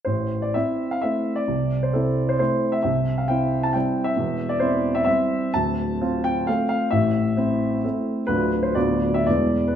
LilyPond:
\new Staff \with { instrumentName = "Grand piano" } { \time 3/4 \key a \minor \tempo 4 = 131 << { c''8. d''16 e''8. f''16 e''8. d''16~ | d''8. c''16 a'8. c''16 c''8. e''16 | e''8. f''16 g''8. a''16 g''8. e''16~ | e''8. d''16 c''8. e''16 e''4 |
a''4. g''8 f''8 f''8 | e''4. r4. | b'8. c''16 d''8. e''16 d''8. b'16 | } \\ { <a,, a,>4 <c' e'>4 <a c' e'>4 | <c, c>4 <c' e'>4 <a c' e'>4 | <c, c>4 <c' e'>4 <g c' e'>4 | <e,, e,>4 <c' e'>4 <g c' e'>4 |
<d,, d,>4 <c' f'>4 <a c' f'>4 | <a,, a,>4 <c' e'>4 <a c' e'>4 | <d,, d, a d' f'>4 <d,, d, b d' f'>4 <e,, e, gis b e'>4 | } >> }